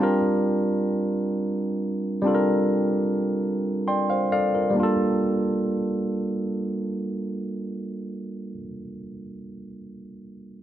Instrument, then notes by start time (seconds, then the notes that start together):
tine electric piano
Already playing: G3
0.00 C4 D4 F4 A#4
2.22 G3 C4 D4
2.26 F4 A4
2.35 A#4
3.88 D5 G5 C6
4.10 C5 F5
4.32 A4 D5 F5
4.55 F4 A#4
4.70 G3 A#3
4.77 D4 F4
4.83 A4